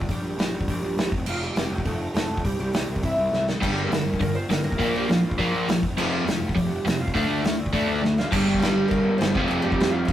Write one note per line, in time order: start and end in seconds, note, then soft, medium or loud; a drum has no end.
0.00 0.11 F4 medium
0.00 kick medium
0.09 0.20 A#1 medium
0.09 0.65 G3 medium
0.09 0.65 G4 medium
0.09 kick medium
0.09 open hi-hat medium
0.22 0.33 A#1 medium
0.38 0.49 A#1 medium
0.38 snare loud
0.38 open hi-hat medium
0.52 0.63 A#1 medium
0.61 kick medium
0.68 0.79 A#1 medium
0.68 1.10 G3 medium
0.68 1.10 G4 medium
0.68 kick medium
0.68 open hi-hat medium
0.82 0.93 A#1 medium
0.97 1.08 A#1 loud
0.97 snare loud
0.97 open hi-hat medium
1.12 1.23 F1 medium
1.12 kick medium
1.26 1.48 F1 medium
1.26 1.42 F4 medium
1.26 1.41 F5 medium
1.26 crash loud
1.43 1.83 G3 medium
1.43 1.84 G4 loud
1.56 1.67 F1 medium
1.56 snare loud
1.56 open hi-hat medium
1.70 1.81 F1 medium
1.78 kick medium
1.85 2.07 F1 medium
1.85 2.13 A3 medium
1.85 2.13 A4 medium
1.85 kick medium
1.85 open hi-hat medium
2.14 2.26 F1 medium
2.14 2.42 A3 medium
2.14 2.45 A4 medium
2.14 snare loud
2.14 open hi-hat medium
2.29 2.40 F1 medium
2.37 kick medium
2.45 2.56 C2 medium
2.45 2.59 G3 medium
2.45 2.59 G4 medium
2.45 kick medium
2.45 open hi-hat medium
2.59 2.70 C2 medium
2.59 3.01 G3 medium
2.59 3.04 G4 medium
2.74 2.85 C2 medium
2.74 snare loud
2.74 open hi-hat medium
2.88 2.99 C2 medium
2.96 kick medium
3.03 3.14 C2 medium
3.03 3.45 E4 medium
3.03 3.45 E5 medium
3.03 kick medium
3.03 open hi-hat medium
3.17 3.28 C2 medium
3.32 3.54 C2 medium
3.32 snare medium
3.49 snare medium
3.61 3.84 G1 loud
3.61 3.89 G2 medium
3.61 3.90 D3 medium
3.61 3.91 G3 loud
3.61 3.77 G3 medium
3.61 3.77 G4 loud
3.61 kick loud
3.61 crash loud
3.78 4.18 A#3 medium
3.78 4.21 A#4 loud
3.90 4.01 G1 medium
3.90 4.04 G2 medium
3.90 4.04 D3 medium
3.90 snare loud
3.90 open hi-hat medium
4.06 4.17 G1 medium
4.14 kick medium
4.20 4.42 G1 medium
4.20 4.34 G2 medium
4.20 4.34 D3 medium
4.20 4.35 A#3 medium
4.20 4.35 A#4 medium
4.20 kick medium
4.20 open hi-hat medium
4.35 4.49 C4 medium
4.35 4.51 C5 medium
4.48 4.60 G1 medium
4.48 4.63 G2 medium
4.48 4.63 D3 medium
4.48 4.63 A#3 medium
4.48 4.63 A#4 medium
4.48 snare loud
4.48 open hi-hat medium
4.64 4.80 G1 medium
4.64 4.92 A#3 medium
4.64 4.95 A#4 loud
4.72 kick medium
4.79 4.91 A#1 medium
4.79 5.07 A#2 loud
4.79 5.08 F3 medium
4.79 5.09 A#3 loud
4.79 kick medium
4.79 open hi-hat medium
4.94 5.05 A#1 medium
4.94 5.09 G3 medium
4.94 5.09 G4 loud
5.09 5.20 A#1 medium
5.09 5.22 A#2 medium
5.09 5.22 F3 medium
5.09 5.79 F4 medium
5.09 5.79 F5 medium
5.09 snare loud
5.09 open hi-hat soft
5.24 5.35 A#1 medium
5.31 kick medium
5.38 5.50 A#1 medium
5.38 5.67 A#2 medium
5.38 5.68 F3 loud
5.38 5.68 A#3 loud
5.38 kick medium
5.38 open hi-hat medium
5.54 5.64 A#1 medium
5.68 5.79 A#1 medium
5.68 5.81 A#2 medium
5.68 5.82 F3 medium
5.68 snare loud
5.68 open hi-hat medium
5.83 5.94 F1 medium
5.83 kick medium
5.97 6.19 F1 medium
5.97 6.25 F2 medium
5.97 6.25 C3 loud
5.97 6.26 F3 loud
5.97 6.11 D#4 medium
5.97 6.12 D#5 medium
5.97 crash loud
6.12 6.56 F4 medium
6.12 6.54 F5 medium
6.26 6.37 F1 loud
6.26 6.39 F2 medium
6.26 6.40 C3 medium
6.26 snare loud
6.26 open hi-hat medium
6.40 6.51 F1 medium
6.49 kick medium
6.56 6.78 F1 medium
6.56 6.69 F2 medium
6.56 6.69 C3 medium
6.56 6.98 G3 medium
6.56 6.99 G4 medium
6.56 kick loud
6.56 open hi-hat medium
6.85 6.96 F1 loud
6.85 6.99 F2 medium
6.85 6.99 C3 medium
6.85 snare loud
6.85 open hi-hat medium
6.99 7.10 F1 medium
6.99 7.13 F4 medium
6.99 7.13 F5 medium
7.08 kick medium
7.14 7.26 D2 loud
7.14 7.43 D3 medium
7.14 7.43 A3 loud
7.14 7.44 D4 loud
7.14 7.99 F4 medium
7.14 7.99 F5 medium
7.14 kick medium
7.14 open hi-hat medium
7.28 7.39 D2 medium
7.43 7.54 D2 medium
7.43 7.58 D3 medium
7.43 7.58 A3 medium
7.43 snare loud
7.43 open hi-hat medium
7.58 7.69 D2 medium
7.66 kick medium
7.73 7.84 D2 medium
7.73 8.02 D3 loud
7.73 8.02 A3 medium
7.73 8.03 D4 medium
7.73 kick medium
7.73 open hi-hat soft
7.88 7.99 D2 medium
8.02 8.24 D2 medium
8.02 8.16 D3 medium
8.02 8.16 A3 medium
8.02 snare medium
8.18 8.31 F4 medium
8.18 8.31 F5 medium
8.18 snare medium
8.31 8.41 G1 medium
8.31 9.33 G2 loud
8.31 9.34 D3 loud
8.31 8.60 G3 medium
8.31 9.35 G3 loud
8.31 8.58 G4 medium
8.31 kick loud
8.31 crash loud
8.31 crash medium
8.48 8.56 G1 medium
8.54 kick medium
8.60 8.70 G1 loud
8.60 8.88 G3 medium
8.60 8.91 G4 loud
8.60 snare loud
8.60 crash medium
8.76 8.85 G1 medium
8.88 9.00 G1 loud
8.88 9.17 A#3 medium
8.88 9.17 A#4 loud
8.88 kick loud
8.88 crash medium
9.05 9.14 G1 loud
9.18 9.30 G1 loud
9.18 9.47 C4 medium
9.18 9.47 C5 loud
9.18 snare loud
9.18 crash medium
9.34 9.44 F1 loud
9.34 10.13 F2 medium
9.34 10.13 C3 loud
9.34 10.13 F3 medium
9.34 kick loud
9.48 9.59 F1 medium
9.48 9.63 A3 medium
9.48 9.63 A4 loud
9.48 crash medium
9.62 9.73 F1 medium
9.62 9.91 G3 medium
9.62 9.90 G4 loud
9.72 kick medium
9.79 9.88 F1 loud
9.79 snare loud
9.79 crash medium
9.90 10.02 F1 medium
9.90 10.04 F4 loud
9.90 10.06 F5 medium
10.05 10.13 F1 medium
10.05 10.13 F4 medium
10.05 10.13 F5 medium
10.05 kick loud
10.05 crash medium